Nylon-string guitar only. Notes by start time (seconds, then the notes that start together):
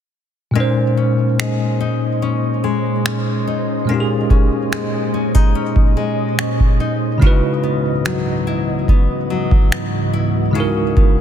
0.55 A#2
0.97 C#4
1.39 G#3
1.80 D#4
2.22 C#4
2.64 G#3
3.06 C#4
3.47 D#4
3.89 A#2
4.31 C#4
4.72 G#3
5.14 C#4
5.35 D#4
5.55 C#4
5.97 G#3
6.38 C#4
6.80 D#4
7.22 C#3
7.63 B3
8.05 F#3
8.47 E4
8.89 B3
9.30 F#3
9.72 B3
10.13 E4
10.55 C#3
10.97 B3